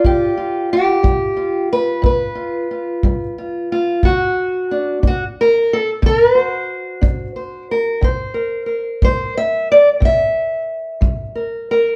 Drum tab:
BD |o--o--o--o--|o--o--o--o--|o--o--o--o--|